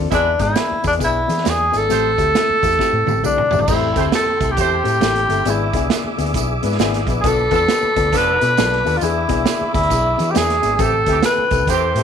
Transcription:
0.10 E2 E3 G#3 B3 D4 E4 G#4 B4, kick, closed hi-hat, tambourine
0.38 G#2 B3 D4 E4 G#4, kick, closed hi-hat, tambourine
0.55 B3 D4 E4 G#4, snare, closed hi-hat, tambourine
0.71 muted fingered electric bass stroke
0.82 E2 B3 D4 E4 G#4, kick, closed hi-hat, tambourine
0.87 D4
0.93 closed hi-hat
0.98 B1 B3 D4 E4 G#4, kick, closed hi-hat, tambourine
1.05 E4
1.26 E3 B3 D4 E4 G#4, closed hi-hat, tambourine
1.37 snare
1.43 E2 B3 D4 E4 G#4, snare, closed hi-hat, tambourine
1.50 G#4
1.71 G#1 B3 D4 E4 G#4, closed hi-hat, tambourine
1.77 A4
1.89 A1 A2 A3 C4 E4 G4 C5, closed hi-hat, tambourine
2.18 D2 A3 C4 E4 G4, kick, closed hi-hat, tambourine
2.35 A3 C4 E4 A4, snare, closed hi-hat, tambourine
2.49 muted fingered electric bass stroke
2.63 E2 A3 C4 E4 G4, kick, closed hi-hat, tambourine
2.72 closed hi-hat
2.79 A3 C4 E4 G4, kick, snare, tambourine
2.93 A2
3.06 A2 A3 C4 E4 G4, high tom, tambourine
3.14 A1
3.23 B1 A3 C4 D4 E4 G4, mid tom, tambourine
3.38 mid tom
3.51 A1 A3 C4 E4 G4, floor tom, tambourine
3.59 A1 E4, floor tom
3.68 A1 A2 A3 C4 E4 G4 A4 C5 G5 C6, kick, crash, tambourine
3.96 D2 A3 C4 E4 G4 C5, kick, closed hi-hat, tambourine
4.12 A3 C4 E4 G4 A4, snare, closed hi-hat, tambourine
4.26 muted fingered electric bass stroke
4.40 C2 A3 C4 E4 G4, kick, closed hi-hat, tambourine
4.51 G4
4.57 E2 A3 C4 E4 G4 C5, kick, closed hi-hat, tambourine
4.83 A2 A3 C4 E4 G4, closed hi-hat
4.88 tambourine
5.00 A1 A3 C4 E4 G4, snare, closed hi-hat, tambourine
5.16 closed hi-hat
5.28 G1 A3 C4 E4 G4, closed hi-hat, tambourine
5.45 G#1 G#2 B3 D4 E4 G#4 E5 D6, closed hi-hat, tambourine
5.50 E4
5.73 C2 B3 D4 E4 G#4, kick, closed hi-hat, tambourine
5.90 B3 D4 E4 G#4, snare, closed hi-hat, tambourine
6.04 muted fingered electric bass stroke
6.17 D2 B3 D4 E4 G#4, closed hi-hat, tambourine
6.26 closed hi-hat
6.34 B1 B3 D4 E4 G#4, kick, closed hi-hat, tambourine
6.62 G#2 B3 D4 E4 B4, closed hi-hat, tambourine
6.71 snare
6.79 G#1 B3 D4 E4 G#4, snare, closed hi-hat, tambourine
6.94 snare, closed hi-hat
7.07 A#1 B3 D4 E4 B4, kick, closed hi-hat, tambourine
7.21 B1 B2 F3 B3 D4 F4 G#4 A4 B4 A5, kick, closed hi-hat
7.26 A4, tambourine
7.51 E2 F3 B3 D4 F4 A4, kick, closed hi-hat, tambourine
7.68 B3 D4 F4 G4, snare, closed hi-hat, tambourine
7.83 muted fingered electric bass stroke
7.95 D2 B3 D4 F4 A4, kick, closed hi-hat, tambourine
8.13 F1 F3 B3 D4 F4 A4, kick, closed hi-hat, tambourine
8.17 B4
8.41 B2 B3 D4 F4 A4, closed hi-hat, tambourine
8.57 B1 B3 D4 F4 A4, snare, closed hi-hat, tambourine
8.72 snare
8.84 D#2 B3 D4 F4 A4, open hi-hat, tambourine
8.97 E3 B3 D4 F4, tambourine
9.01 E2 E4 G#4 E5, closed hi-hat
9.28 C2 B3 D4 E4 G#4, kick, closed hi-hat, tambourine
9.45 D4 E4 G#4, snare, closed hi-hat, tambourine
9.61 muted fingered electric bass stroke
9.73 D2 B3 D4 E4 G#4, kick, closed hi-hat, tambourine
9.83 closed hi-hat
9.89 B1 B3 D4 E4 G#4, kick, closed hi-hat, tambourine
10.17 E3 B3 D4 E4 G#4, closed hi-hat, tambourine
10.31 B3 D4 E4 G4 G#4, closed hi-hat
10.36 E2 G#4, snare, tambourine
10.50 snare, closed hi-hat
10.61 G#1 B3 D4 E4 G#4, closed hi-hat, tambourine
10.75 A1 C4 G4 G#4, kick, closed hi-hat
10.79 A2 E3 C4 E4 G4 A4 G5, tambourine
11.06 D2 E3 C4 E4 G4 A4, kick, closed hi-hat, tambourine
11.22 C4 E4 G4 A4 B4, snare, closed hi-hat, tambourine
11.38 muted fingered electric bass stroke
11.51 C2 C4 E4 G4 A4, kick, closed hi-hat, tambourine
11.67 E2 E3 C4 E4 G4 A4 C5, kick, closed hi-hat, tambourine
11.95 A2 C4 E4 G4 A4, closed hi-hat, tambourine

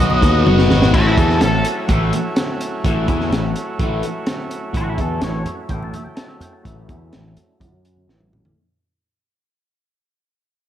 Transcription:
Already playing: B2 F#3 B3 D#4 F#4 D#5
0.00 B1 F#4
0.10 high conga
0.22 D#2 D#4, kick, closed hi-hat
0.46 F#1 B3, high tom, high conga
0.57 snare, high conga
0.70 G#1 F#4, snare, low conga
0.81 snare, low conga
0.93 A1 A2 E3 F#3 A3 C#4 E4 F#4, kick, crash
1.07 E4
1.16 E2 E3 B3 E4 A4, kick, closed hi-hat
1.30 snare
1.39 A1 A2 E3 A4, snare, closed hi-hat
1.65 closed hi-hat
1.88 A1 A2 E3 A3, kick, closed hi-hat
2.13 closed hi-hat
2.36 snare, closed hi-hat
2.61 closed hi-hat
2.84 A1 A2 E3 A3, kick, closed hi-hat
3.07 E2 E3 B3 E4, kick, closed hi-hat
3.21 snare
3.31 A1 A2 E3, snare, closed hi-hat
3.56 closed hi-hat
3.79 A1 A2 E3 A3, kick, closed hi-hat
4.03 closed hi-hat
4.27 snare, closed hi-hat
4.51 closed hi-hat
4.73 A1 A2 E3 A3 F#4, kick, closed hi-hat
4.89 E4
4.96 E2 E3 B3 E4, kick, closed hi-hat
5.01 A4
5.21 A1 A2 E3 C#5, snare, closed hi-hat, low conga
5.46 closed hi-hat, low conga
5.69 A1 A2 E3 A3 G5, kick, closed hi-hat, high conga
5.83 A5, high conga
5.94 E5, closed hi-hat, low conga
6.04 G5, high conga
6.16 A5, snare, closed hi-hat
6.28 E5
6.41 G5, closed hi-hat, low conga
6.53 A5
6.63 A1 A2 E3 A3 E5, kick, closed hi-hat
6.88 E2 E3 B3 E4 E5, kick, closed hi-hat
7.13 A1 A2 E3, snare, closed hi-hat, low conga
7.37 closed hi-hat, low conga
7.60 F#2 C#3 F#3 C#4 F#4, kick, closed hi-hat, high conga
7.73 high conga
7.85 closed hi-hat
7.97 high conga
8.08 A1 A2 E3 A3 C#4 E4, snare
8.21 high tom, high conga
8.33 mid tom, low conga
8.45 floor tom

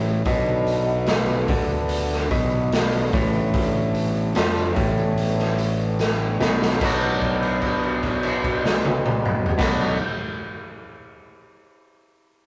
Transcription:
Already playing: A1 A2
0.06 tambourine
0.25 B1 B2 D3 B3 D4 B4, kick, open hi-hat, tambourine
0.67 open hi-hat, tambourine
1.06 snare, open hi-hat, tambourine
1.48 D2 D3, kick, open hi-hat
1.72 tambourine
1.89 open hi-hat, tambourine
2.12 snare, tambourine
2.31 B1 B2, kick, open hi-hat, tambourine
2.72 snare, open hi-hat, tambourine
3.13 A1 A2, kick, open hi-hat, tambourine
3.35 tambourine
3.54 kick, open hi-hat, tambourine
3.58 C#5
3.76 tambourine
3.95 open hi-hat, tambourine
4.17 tambourine
4.35 F2 F3, snare, open hi-hat, tambourine
4.57 tambourine
4.75 A1 A2, kick, open hi-hat, tambourine
4.97 tambourine
5.18 open hi-hat, tambourine
5.38 snare, tambourine
5.58 open hi-hat, tambourine
5.80 tambourine
5.99 snare, tambourine
6.19 tambourine
6.40 B1 B2, snare, tambourine
6.59 snare, tambourine
6.80 B1 B2 F#3 B3 D4 B4, kick, crash, tambourine
6.85 F#4
7.22 kick, crash
7.43 crash
7.62 kick, crash
7.83 crash
8.03 kick, crash
8.23 crash
8.44 kick, crash
8.65 snare
8.85 high tom
9.06 mid tom
9.25 mid tom
9.46 floor tom
9.58 B1 B2 F#3 B3 D4 B4, kick, snare, crash
9.62 F#4

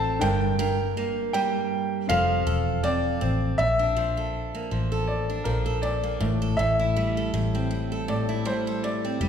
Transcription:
Already playing: A1 F3 C4 A4 F5 A5
0.19 G1 G2 D4 A#4 G5
0.24 G5
0.59 G2 A#4
0.97 A#3
1.33 G3 G5
2.08 F1 F3 C4 A4 F5
2.47 E1 A4
2.83 C4 D5
3.21 A1 C4
3.58 A#1 A#2 E5
3.79 D4
3.97 F3
4.17 A4
4.55 A#3
4.71 A1 F3
4.92 A4
5.07 D5
5.30 D4
5.44 A#1 F3 A#4
5.66 A4
5.82 A#2 D5
6.04 A#3
6.20 A1 A2
6.42 A4
6.57 A1 A2 E5
6.79 E4
6.96 G3
7.17 A4
7.34 A1 A2
7.55 C4
7.71 G3
7.92 A4
8.08 A2 D5
8.29 E4
8.45 G3 C5
8.67 A4
8.83 A2 D5
9.05 C4
9.20 F1 G3

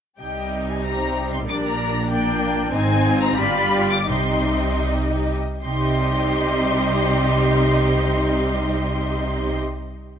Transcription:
0.20 C2 C3 G3 D#4 G4 D#5 G5
0.69 G#5
0.85 G4 C5 A#5
1.33 C6
1.47 A#1 A#2 D4 A#4 D5 D6
1.65 A#5
2.09 A#3 D4 A#4 D5 G5
2.72 G#1 G#2 C4 D#4 C5 G#5
3.04 F4
3.23 A#5
3.37 G1 G2 G3 F4 G4 D5 B5
3.92 D6
4.08 C2 C3 G3 D#4 G4 D#5 C6
5.63 C2 C3 G3 D#4 G4 D#5 C6

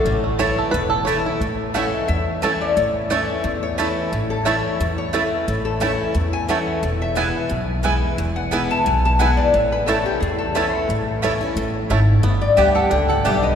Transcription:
Already playing: A3 A4
0.05 A1 A2 C#4
0.24 A3
0.39 E3 A3 C#4 E4 C#5 A5
0.58 A4
0.71 E1 E2 B4
0.90 A4
1.05 E3 A3 C#4 E4 C#5 A5
1.26 E4
1.40 A1 A2
1.74 E3 A3 C#4 E4 C#5 F#5 A5
1.93 D#5
2.08 E2 E5
2.42 E3 A3 C#4 E4 C#5 A5
2.61 D5
2.77 A1 A2 C#5
3.10 E3 A3 C#4 E4 C#5 A5
3.44 E2
3.63 C#5
3.78 E3 A3 C#4 E4 B4 C#5 A5
4.12 A1 A2
4.30 A4
4.45 E3 A3 C#4 E4 C#5 A5
4.80 E2
4.98 C#5
5.13 E3 A3 C#4 E4 B4 C#5 A5
5.48 A1 A2
5.65 A4
5.80 E3 A3 C#4 E4 C#5 A5
6.14 E2
6.33 G#5
6.48 E3 A3 C#4 E4 C#5 F#5 A5
6.83 E1 E2
7.02 E5
7.15 E3 G#3 B3 E4 B4 G#5
7.49 B1 B2
7.83 E3 G#3 B3 E4 B4 G#5
8.18 E1 E2
8.36 F#5
8.51 E3 G#3 B3 E4 B4 G#5
8.71 A5
8.86 B1 B2 G#5
9.05 A5
9.19 E3 G#3 B3 E4 B4 F#5 G#5
9.37 D5
9.54 A1 A2 C#5
9.72 B4
9.86 E3 A3 C#4 E4 A4 C#5 A5
10.06 G4
10.20 E2 G#4
10.38 A4
10.55 E3 A3 C#4 E4 B4 C#5 A5
10.74 C#5
10.89 A1 A2
11.22 E3 A3 C#4 E4 C#5 A5
11.41 C#4 E4
11.56 A1 A2
11.90 G#1 G#2 A3 C#4 E4 C#5 A5
12.23 G1 G2 B3
12.41 D5
12.56 D2 G3 B3 D4 G4 D5 E5 G5
12.75 A4 F#5
12.90 C#2 D3 D4 G5
13.09 A4 F#5
13.25 B1 G3 B3 D4 G4 D5 E5 G5
13.42 B3 D#5

